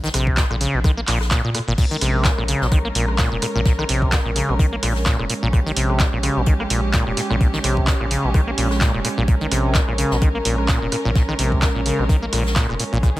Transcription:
0.04 acid bass D#3, snare
0.14 sub bass A#1, acid bass C3, cross-stick, closed hi-hat, open hi-hat
0.27 kick
0.37 acid bass A#2, kick, snare, clap, closed hi-hat
0.50 sub bass A#1, acid bass A#2, cross-stick
0.61 acid bass C#3, closed hi-hat, open hi-hat
0.74 sub bass A#1, acid bass A#2
0.84 acid bass D#3, kick, cross-stick, closed hi-hat
0.97 acid bass A#3
1.07 sub bass A#1, acid bass A#2, clap, open hi-hat
1.21 cross-stick, snare
1.31 acid bass A#2, kick, snare, clap, closed hi-hat
1.44 acid bass A#2, sub bass A#2
1.55 acid bass A#2, cross-stick, open hi-hat
1.68 sub bass G#1, acid bass A#2
1.78 acid bass A#2, string section G#3 C#4 A#4, kick, closed hi-hat, crash
1.91 acid bass D#3, closed hi-hat
2.01 sub bass A#1, acid bass C3, cross-stick, closed hi-hat, open hi-hat
2.25 acid bass A#2, kick, snare, clap, closed hi-hat
2.38 sub bass A#1, acid bass A#2, cross-stick
2.48 acid bass C#3, closed hi-hat, open hi-hat
2.61 sub bass A#1, acid bass A#2, snare
2.71 acid bass D#3, kick, cross-stick, closed hi-hat
2.85 acid bass A#3
2.95 sub bass A#1, acid bass A#2, closed hi-hat, open hi-hat
3.08 cross-stick
3.18 acid bass A#2, kick, snare, clap, closed hi-hat
3.32 sub bass F1, acid bass A#2
3.42 acid bass A#2, cross-stick, closed hi-hat, open hi-hat
3.55 sub bass A#1, acid bass A#2
3.65 acid bass A#2, kick, snare, closed hi-hat
3.79 acid bass D#3, cross-stick
3.89 sub bass A#1, acid bass C3, closed hi-hat, open hi-hat
4.02 kick
4.12 acid bass A#2, kick, cross-stick, snare, clap, closed hi-hat
4.26 sub bass A#1, acid bass A#2
4.36 acid bass C#3, closed hi-hat, open hi-hat
4.49 sub bass A#1, acid bass A#2, cross-stick
4.59 acid bass D#3, kick, closed hi-hat
4.72 acid bass A#3
4.83 sub bass A#1, acid bass A#2, cross-stick, open hi-hat
4.96 snare
5.06 acid bass A#2, kick, snare, clap, closed hi-hat
5.19 sub bass F1, acid bass A#2, cross-stick
5.30 acid bass A#2, closed hi-hat, open hi-hat
5.43 sub bass A#1, acid bass A#2
5.53 acid bass A#2, string section G4, kick, cross-stick, closed hi-hat
5.66 acid bass D#3, closed hi-hat
5.76 sub bass A#1, acid bass C3, closed hi-hat, open hi-hat
5.90 cross-stick
5.99 acid bass A#2, kick, snare, clap, closed hi-hat
6.13 sub bass A#1, acid bass A#2
6.23 acid bass C#3, cross-stick, closed hi-hat, open hi-hat
6.36 sub bass A#1, acid bass A#2
6.46 acid bass D#3, kick, closed hi-hat
6.60 acid bass A#3, cross-stick
6.70 sub bass A#1, acid bass A#2, closed hi-hat, open hi-hat
6.93 acid bass A#2, kick, cross-stick, snare, clap, closed hi-hat
7.07 sub bass F1, acid bass A#2
7.17 acid bass A#2, snare, closed hi-hat, open hi-hat
7.30 sub bass A#1, acid bass A#2, cross-stick
7.41 acid bass A#2, kick, closed hi-hat
7.53 acid bass D#3, snare
7.64 sub bass A#1, acid bass C3, cross-stick, closed hi-hat, open hi-hat
7.77 kick
7.87 acid bass A#2, kick, snare, clap, closed hi-hat
8.01 sub bass A#1, acid bass A#2, cross-stick
8.11 acid bass C#3, closed hi-hat, open hi-hat
8.24 sub bass A#1, acid bass A#2
8.34 acid bass D#3, kick, cross-stick, closed hi-hat
8.47 acid bass A#3
8.58 sub bass A#1, acid bass A#2, open hi-hat
8.71 cross-stick, snare
8.81 acid bass A#2, kick, snare, clap, closed hi-hat
8.94 sub bass F1, acid bass A#2
9.04 acid bass A#2, cross-stick, closed hi-hat, open hi-hat
9.18 sub bass A#1, acid bass A#2
9.28 acid bass A#2, string section A#4, kick, closed hi-hat
9.41 acid bass D#3, closed hi-hat
9.51 sub bass A#1, acid bass C3, cross-stick, closed hi-hat, open hi-hat
9.74 acid bass A#2, kick, snare, clap, closed hi-hat
9.88 sub bass A#1, acid bass A#2, cross-stick
9.98 acid bass C#3, closed hi-hat, open hi-hat
10.11 sub bass A#1, acid bass A#2, snare
10.21 acid bass D#3, kick, cross-stick, closed hi-hat
10.35 acid bass A#3
10.45 sub bass A#1, acid bass A#2, closed hi-hat, open hi-hat
10.58 cross-stick
10.68 acid bass A#2, kick, snare, clap, closed hi-hat
10.82 sub bass F1, acid bass A#2
10.92 acid bass A#2, cross-stick, closed hi-hat, open hi-hat
11.05 sub bass A#1, acid bass A#2
11.15 acid bass A#2, kick, snare, closed hi-hat
11.29 acid bass D#3, cross-stick
11.39 sub bass A#1, acid bass C3, closed hi-hat, open hi-hat
11.52 kick
11.62 acid bass A#2, kick, cross-stick, snare, clap, closed hi-hat
11.75 sub bass A#1, acid bass A#2
11.86 acid bass C#3, closed hi-hat, open hi-hat
11.99 sub bass A#1, acid bass A#2, cross-stick
12.09 acid bass D#3, kick, closed hi-hat
12.22 acid bass A#3
12.32 sub bass A#1, acid bass A#2, cross-stick, open hi-hat
12.46 snare
12.56 acid bass A#2, kick, snare, clap, closed hi-hat
12.69 sub bass F1, acid bass A#2, cross-stick
12.80 acid bass A#2, closed hi-hat, open hi-hat
12.93 sub bass A#1, acid bass A#2
13.03 acid bass A#2, string section G#4, kick, cross-stick, closed hi-hat
13.16 acid bass D#3, closed hi-hat

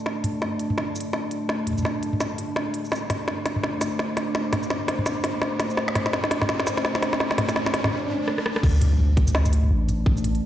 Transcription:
Already playing: ambient pad A3 D4 D5 A5, riser
0.06 snare
0.24 closed hi-hat, mid tom
0.42 snare
0.59 closed hi-hat
0.70 mid tom
0.78 snare
0.95 shaker
1.00 closed hi-hat
1.13 snare
1.31 closed hi-hat
1.49 snare
1.67 closed hi-hat, mid tom
1.71 mid tom
1.73 mid tom
1.78 mid tom, shaker
1.83 snare, mid tom
2.03 closed hi-hat
2.13 mid tom
2.20 snare, shaker
2.38 closed hi-hat
2.56 snare
2.74 closed hi-hat
2.85 shaker
2.89 ambient pad C5 D6, snare, shaker
2.92 shaker
2.95 shaker
2.98 shaker
3.10 snare, closed hi-hat, mid tom
3.28 snare
3.46 snare, closed hi-hat
3.56 mid tom
3.64 snare
3.81 snare, closed hi-hat, shaker
3.99 snare
4.17 snare, closed hi-hat
4.35 snare
4.53 snare, closed hi-hat, mid tom
4.63 shaker
4.70 snare
4.88 snare, closed hi-hat
4.99 mid tom
5.06 snare, shaker
5.24 snare, closed hi-hat
5.42 snare
5.60 snare, closed hi-hat
5.70 shaker
5.77 snare
5.88 snare
5.95 snare, closed hi-hat, mid tom
6.06 snare
6.13 snare
6.24 snare
6.31 snare, closed hi-hat
6.42 snare, mid tom
6.49 snare
6.60 snare
6.67 snare, closed hi-hat, shaker
6.77 snare
6.85 snare
6.95 snare
7.03 snare, closed hi-hat
7.13 snare
7.20 snare
7.31 snare
7.38 snare, closed hi-hat, mid tom
7.49 snare, closed hi-hat, shaker
7.56 snare
7.66 snare
7.74 snare, closed hi-hat
7.84 snare, mid tom
7.86 mid tom
7.88 mid tom, swell
8.28 cross-stick
8.38 cross-stick
8.46 cross-stick
8.56 cross-stick
8.63 808-style bass D2, ambient pad A3 D4 D5 A5, kick, mid tom, crash, impact
8.81 closed hi-hat, mid tom
8.99 mid tom
9.17 kick, closed hi-hat
9.27 mid tom, shaker
9.35 snare
9.45 mid tom, shaker
9.53 closed hi-hat
9.63 mid tom
9.71 808-style bass A1
9.89 closed hi-hat, mid tom, shaker
10.06 kick, mid tom
10.17 shaker
10.24 closed hi-hat, mid tom
10.35 closed hi-hat

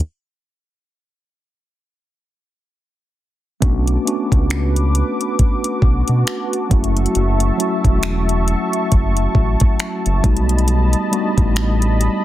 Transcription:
3.60 analog synth bass B1, tine electric piano A3 B3 C#4 D4 F#4, analog synth pad F#4 B4 A5 D6, kick, closed hi-hat
3.88 closed hi-hat
4.05 tine electric piano A3 B3 C#4 D4 F#4, closed hi-hat
4.32 analog synth bass C#2, kick, closed hi-hat
4.50 finger snap, closed hi-hat
4.76 closed hi-hat
4.95 closed hi-hat
5.21 closed hi-hat
5.39 kick, closed hi-hat
5.64 closed hi-hat
5.82 analog synth bass B1, kick
6.08 analog synth bass B2, closed hi-hat
6.27 finger snap, closed hi-hat
6.53 closed hi-hat
6.69 analog synth bass F#1, tine electric piano F#3 A3 C#4 E4 F#4, analog synth pad E5 C#6, kick, closed hi-hat
6.84 closed hi-hat
6.97 closed hi-hat
7.06 closed hi-hat
7.15 analog synth bass F#1, closed hi-hat
7.40 closed hi-hat
7.57 tine electric piano F#3 A3 C#4 E4 F#4, closed hi-hat
7.84 analog synth bass E1, kick, closed hi-hat
8.03 finger snap, closed hi-hat
8.29 closed hi-hat
8.48 closed hi-hat
8.73 closed hi-hat
8.92 analog synth bass F#1, kick, closed hi-hat
9.17 closed hi-hat
9.35 analog synth bass A1, kick
9.60 kick, closed hi-hat
9.80 finger snap, closed hi-hat
10.06 analog synth bass F#1, closed hi-hat
10.22 analog synth bass B1, tine electric piano G3 A3 B3 D#4 F#4, analog synth pad G3 D#5 B5, kick, closed hi-hat
10.37 closed hi-hat
10.49 closed hi-hat
10.58 closed hi-hat
10.68 closed hi-hat
10.93 closed hi-hat
11.11 tine electric piano G3 A3 B3 D4 F#4, closed hi-hat
11.20 tine electric piano D#4
11.38 analog synth bass A1, kick, closed hi-hat
11.56 finger snap, closed hi-hat
11.82 closed hi-hat
12.01 closed hi-hat

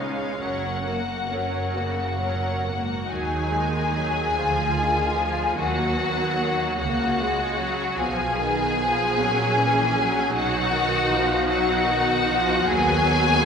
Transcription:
Already playing: double bass section C#2, cello section C#3, viola section G#3 C#4, violin section D#4 C#5 F5
0.39 double bass section F#1, cello section F#2, viola section F#3 C#4, violin section A#4 C#5 F#5
0.84 viola section A#3, violin section F#4 A#4
1.31 viola section F#3 C#4, violin section A#4 C#5
1.73 double bass section F#1, cello section C#3, viola section A#3, violin section F#4 A#4 F#5
2.20 cello section A#2, viola section F#3 C#4, violin section A#4 C#5
2.66 cello section G#2, viola section A#3, violin section F#4 A#4
3.08 double bass section D#2, cello section D#3, viola section F#3 D#4, violin section G#4 G#5
3.53 viola section G#3
3.94 viola section F#3
4.36 double bass section D2, cello section D3, viola section F3 F4
4.75 viola section D#3
5.16 viola section F3
5.56 double bass section D#2, cello section D#3, viola section F#3 A#3, violin section F#4 F#5
5.96 viola section B3
6.39 viola section A#3
6.78 double bass section C#2, cello section C#3, viola section A#3, violin section F#4 F#5
7.20 viola section G#3
7.59 viola section F#3
7.99 double bass section B1, cello section B2, viola section F3 B3, violin section G#4 G#5
8.40 viola section D#3
8.80 viola section F3
9.18 double bass section A#1, cello section A#2, viola section F#3 C#4
9.58 viola section E3
9.96 viola section F#3
10.33 double bass section B1, cello section B2, viola section F#3 D#4, violin section F#4 F#5
10.73 viola section D#3
11.10 viola section F3
11.48 viola section F#3, violin section F#4 F#5
11.87 viola section D#3
12.26 viola section F3
12.65 double bass section D#2, cello section D#2, viola section F#3 B3, violin section G#4 G#5
13.03 viola section B3
13.39 viola section C#4

